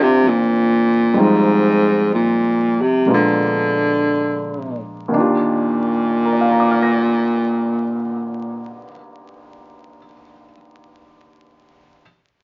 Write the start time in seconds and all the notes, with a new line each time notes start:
Already playing: D#2 G#3 A#3 C4 D4
0.00 C3 F4
0.24 E2
0.28 A#2
1.13 F2 G3 G#3 C4
1.18 G#2 D#4 F4
2.14 A#2
2.81 C3
3.06 A#1 G#3 A#3 B3 D4 F4
3.13 D3
5.08 D#2 D#3
5.14 D#2 A#2 D4 F4
5.20 G4
6.25 A#4
6.33 D5
6.41 F5
6.50 A#5
6.60 D6
6.71 F6
6.83 A#6